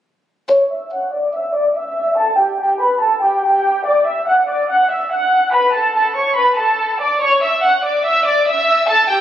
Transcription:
0.50 0.68 C#5 loud
0.50 0.68 C#6 medium
0.71 0.89 E5 medium
0.71 0.89 E6 medium
0.91 1.09 F#5 medium
0.91 1.10 F#6 medium
1.12 1.30 D5 medium
1.12 1.31 D6 medium
1.33 1.51 E5 medium
1.33 1.52 E6 medium
1.54 1.72 D5 medium
1.54 1.73 D6 medium
1.76 2.15 E5 medium
1.76 2.15 E6 medium
2.17 2.36 A4 medium
2.17 2.35 A5 loud
2.38 2.57 G4 medium
2.38 2.56 G5 medium
2.60 2.78 G4 medium
2.60 2.77 G5 medium
2.81 2.99 B4 medium
2.81 2.98 B5 medium
3.01 3.20 A4 medium
3.01 3.19 A5 medium
3.22 3.41 G4 medium
3.22 3.40 G5 medium
3.43 3.83 G4 medium
3.43 3.83 G5 medium
3.85 4.03 D5 loud
3.85 4.04 D6 medium
4.06 4.24 E5 medium
4.06 4.25 E6 medium
4.27 4.45 F#5 medium
4.27 4.46 F#6 medium
4.49 4.66 D5 medium
4.49 4.67 D6 medium
4.69 4.87 F#5 loud
4.69 4.88 F#6 medium
4.90 5.08 E5 medium
4.90 5.08 E6 medium
5.11 5.51 F#5 medium
5.11 5.51 F#6 medium
5.53 5.71 B4 medium
5.53 5.71 B5 loud
5.74 5.92 A4 medium
5.74 5.92 A5 medium
5.95 6.14 A4 medium
5.95 6.13 A5 medium
6.16 6.34 C#5 medium
6.16 6.34 C#6 medium
6.36 6.55 B4 medium
6.36 6.55 B5 medium
6.58 6.98 A4 medium
6.58 6.97 A5 medium
7.00 7.18 D5 medium
7.00 7.19 D6 medium
7.21 7.39 C#5 loud
7.21 7.39 C#6 medium
7.42 7.60 E5 medium
7.42 7.61 E6 medium
7.63 7.81 F#5 medium
7.63 7.81 F#6 medium
7.84 8.02 D5 medium
7.84 8.02 D6 medium
8.05 8.23 E5 medium
8.05 8.23 E6 medium
8.25 8.43 D5 medium
8.25 8.44 D6 medium
8.47 8.86 E5 medium
8.47 8.87 E6 medium
8.89 9.07 A4 medium
8.89 9.07 A5 loud
9.09 9.21 G4 medium
9.09 9.21 G5 medium

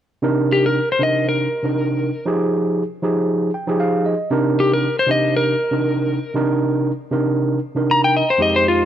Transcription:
0.22 0.78 C3 medium
0.22 0.78 D4 medium
0.22 0.78 D#4 medium
0.22 0.79 A#4 medium
0.52 0.64 G4 medium
0.66 0.89 A#4 medium
0.92 1.01 C5 medium
0.99 1.45 C3 medium
0.99 1.46 D4 medium
0.99 1.46 D#4 medium
0.99 1.46 A#4 medium
1.03 1.26 D#5 medium
1.29 2.26 A#4 medium
1.63 2.09 C3 medium
1.63 2.10 D4 medium
1.63 2.10 D#4 medium
1.63 2.10 A#4 medium
2.26 2.82 F3 medium
2.26 2.82 D#4 medium
2.26 2.82 G4 medium
2.26 2.83 G#4 medium
3.02 3.49 F3 medium
3.02 3.49 D#4 medium
3.02 3.50 G4 medium
3.02 3.50 G#4 medium
3.54 3.78 G5 medium
3.67 4.13 F3 medium
3.67 4.13 D#4 medium
3.67 4.14 G4 medium
3.67 4.14 G#4 medium
3.80 4.04 F5 medium
4.06 4.29 D#5 medium
4.30 4.86 C3 medium
4.30 4.86 D4 medium
4.30 4.87 D#4 medium
4.30 4.87 A#4 loud
4.60 4.71 G4 medium
4.73 4.97 A#4 medium
4.99 5.09 C5 medium
5.07 5.53 C3 medium
5.07 5.54 D4 medium
5.07 5.54 D#4 medium
5.07 5.54 G4 medium
5.11 5.34 D#5 medium
5.37 6.34 A#4 medium
5.71 6.17 C3 medium
5.71 6.17 D4 medium
5.71 6.18 D#4 medium
5.71 6.18 A#4 medium
6.34 6.90 C3 medium
6.34 6.90 D4 medium
6.34 6.91 D#4 medium
6.34 6.91 A#4 medium
7.11 7.57 C3 medium
7.11 7.58 D4 medium
7.11 7.58 D#4 medium
7.11 7.58 A#4 medium
7.75 8.21 C3 medium
7.75 8.21 D4 medium
7.75 8.22 D#4 medium
7.75 8.22 A#4 medium
7.91 8.03 A#5 medium
8.04 8.14 G5 medium
8.17 8.28 D#5 medium
8.30 8.40 C5 medium
8.38 8.85 F2 medium
8.38 8.85 G#3 medium
8.38 8.85 D#4 medium
8.38 8.85 G4 medium
8.42 8.54 D#5 medium
8.56 8.66 C5 medium
8.68 8.85 F4 medium

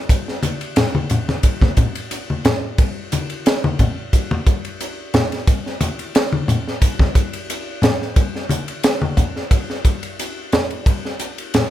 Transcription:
0.09 kick medium
0.09 hi-hat pedal medium
0.09 ride medium
0.28 snare soft
0.43 hi-hat pedal medium
0.43 ride medium
0.43 high conga medium
0.61 ride medium
0.76 snare loud
0.76 hi-hat pedal medium
0.76 ride medium
0.76 low conga medium
0.95 high conga medium
1.10 hi-hat pedal medium
1.10 ride medium
1.10 low conga medium
1.29 snare soft
1.29 high conga medium
1.43 kick medium
1.43 hi-hat pedal medium
1.43 ride medium
1.61 kick medium
1.61 snare soft
1.61 high conga medium
1.77 kick medium
1.77 hi-hat pedal medium
1.77 ride medium
1.77 low conga medium
1.95 ride medium
2.11 hi-hat pedal medium
2.11 ride medium
2.30 high conga medium
2.45 snare loud
2.45 hi-hat pedal medium
2.45 ride medium
2.45 low conga medium
2.78 kick loud
2.78 hi-hat pedal medium
2.78 ride medium
3.12 hi-hat pedal medium
3.12 ride medium
3.12 high conga medium
3.30 ride medium
3.46 snare loud
3.46 hi-hat pedal medium
3.46 ride medium
3.64 high conga medium
3.79 kick medium
3.79 hi-hat pedal medium
3.79 ride medium
3.79 low conga medium
4.13 kick medium
4.13 hi-hat pedal medium
4.13 ride medium
4.31 high conga medium
4.46 kick medium
4.46 hi-hat pedal medium
4.46 ride medium
4.65 ride soft
4.80 hi-hat pedal medium
4.80 ride medium
5.14 snare loud
5.14 hi-hat pedal medium
5.14 ride medium
5.14 low conga medium
5.32 snare soft
5.32 ride medium
5.47 kick loud
5.47 hi-hat pedal medium
5.47 ride medium
5.66 snare soft
5.81 hi-hat pedal medium
5.81 ride medium
5.81 high conga medium
5.99 ride medium
6.15 snare loud
6.15 hi-hat pedal medium
6.15 ride medium
6.32 high conga medium
6.48 hi-hat pedal medium
6.48 ride soft
6.48 low conga medium
6.68 snare soft
6.82 kick medium
6.82 hi-hat pedal medium
6.82 ride medium
6.99 kick medium
6.99 snare soft
6.99 high conga medium
7.15 kick medium
7.15 hi-hat pedal medium
7.15 ride medium
7.33 ride medium
7.50 hi-hat pedal medium
7.50 ride medium
7.82 snare loud
7.82 hi-hat pedal medium
7.82 ride medium
7.82 low conga medium
8.02 snare soft
8.16 kick loud
8.16 hi-hat pedal medium
8.16 ride medium
8.36 snare soft
8.49 hi-hat pedal medium
8.49 ride medium
8.49 high conga medium
8.68 ride medium
8.83 snare loud
8.83 hi-hat pedal medium
8.83 ride medium
9.02 high conga medium
9.17 kick medium
9.17 hi-hat pedal medium
9.17 ride medium
9.17 low conga medium
9.36 snare soft
9.51 kick medium
9.51 hi-hat pedal medium
9.51 ride medium
9.70 snare soft
9.85 kick medium
9.85 hi-hat pedal medium
9.85 ride medium
10.03 ride medium
10.19 hi-hat pedal medium
10.19 ride medium
10.52 snare loud
10.52 hi-hat pedal medium
10.52 ride medium
10.52 low conga medium
10.70 ride soft
10.86 kick loud
10.86 hi-hat pedal medium
10.86 ride medium
11.05 snare soft
11.19 hi-hat pedal medium
11.19 ride medium
11.38 ride medium
11.54 snare loud
11.54 hi-hat pedal medium
11.54 ride medium
11.54 low conga medium

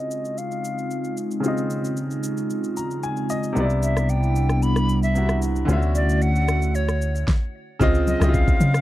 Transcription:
0.00 1.38 C#3 medium
0.00 3.52 C#3 medium
0.00 3.52 G#3 medium
0.00 1.39 C4 medium
0.00 3.52 C4 medium
0.00 3.52 D#4 medium
0.00 1.41 F4 medium
0.00 3.52 F4 medium
0.00 0.39 D#5 medium
0.00 1.42 D#5 medium
0.11 shaker medium
0.25 shaker soft
0.38 1.17 F5 loud
0.38 shaker medium
0.51 shaker soft
0.64 shaker medium
0.78 shaker soft
0.91 shaker medium
1.04 shaker soft
1.17 shaker medium
1.31 shaker medium
1.40 3.50 C#3 medium
1.40 3.52 C4 medium
1.40 shaker medium
1.45 3.53 F4 medium
1.45 3.28 D#5 medium
1.57 shaker soft
1.70 shaker medium
1.85 shaker medium
1.97 shaker medium
2.11 shaker soft
2.23 shaker medium
2.37 shaker soft
2.50 shaker medium
2.64 shaker soft
2.77 3.01 A#5 medium
2.77 shaker medium
2.91 shaker soft
3.03 3.28 G#5 medium
3.03 shaker medium
3.17 shaker soft
3.30 3.54 D#5 medium
3.30 shaker medium
3.43 shaker medium
3.53 5.65 C2 medium
3.53 5.10 C3 medium
3.53 5.66 C3 medium
3.53 5.66 G3 medium
3.53 5.12 B3 medium
3.53 5.66 B3 medium
3.53 5.66 D4 medium
3.53 7.24 E4 medium
3.53 shaker medium
3.58 3.64 D#4 medium
3.58 5.14 D5 medium
3.64 5.15 E4 medium
3.70 shaker soft
3.83 4.11 E5 medium
3.83 shaker medium
3.97 cross-stick medium
3.97 shaker medium
4.09 4.64 G5 medium
4.09 shaker medium
4.23 shaker soft
4.36 shaker medium
4.49 cross-stick medium
4.49 shaker soft
4.62 5.02 B5 loud
4.62 shaker medium
4.76 cross-stick medium
4.76 shaker soft
4.89 shaker medium
5.03 5.39 E5 medium
5.03 shaker soft
5.14 5.68 C3 soft
5.14 5.68 B3 soft
5.14 5.69 E4 soft
5.14 5.70 F#4 medium
5.14 shaker medium
5.29 cross-stick medium
5.29 shaker soft
5.42 shaker medium
5.56 shaker medium
5.65 7.25 D2 medium
5.65 7.23 D3 medium
5.65 7.26 D3 medium
5.65 7.26 A3 medium
5.65 7.24 C#4 medium
5.65 7.26 C#4 medium
5.65 7.26 F#4 medium
5.65 shaker medium
5.70 5.76 F4 medium
5.70 7.27 E5 medium
5.77 7.29 F#4 medium
5.82 shaker soft
5.95 6.23 D5 medium
5.95 shaker medium
6.09 shaker medium
6.22 6.77 F#5 loud
6.22 shaker medium
6.36 shaker soft
6.48 cross-stick medium
6.48 shaker medium
6.62 shaker soft
6.75 7.28 C#5 medium
6.75 shaker medium
6.89 cross-stick medium
6.89 shaker soft
7.02 shaker medium
7.15 shaker soft
7.28 kick loud
7.28 snare medium
7.79 8.16 C#2 loud
7.79 8.12 C#3 medium
7.79 8.13 C4 medium
7.79 8.30 F4 medium
7.79 8.14 F4 medium
7.79 8.30 C5 medium
7.79 8.30 D#5 loud
7.79 8.14 D#5 loud
7.79 kick loud
7.79 low conga medium
7.79 shaker medium
7.95 shaker soft
8.07 8.36 D#5 medium
8.07 high conga medium
8.07 shaker loud
8.20 8.56 C#2 loud
8.20 8.81 C#3 medium
8.20 8.81 C4 medium
8.20 8.28 E4 medium
8.20 8.81 D#5 medium
8.20 cross-stick loud
8.20 high conga medium
8.20 shaker medium
8.29 8.81 F4 medium
8.34 8.81 F5 medium
8.34 kick loud
8.34 shaker medium
8.48 kick loud
8.48 shaker soft
8.60 8.81 C#3 loud
8.60 high conga medium
8.60 shaker loud
8.74 cross-stick medium
8.74 shaker medium

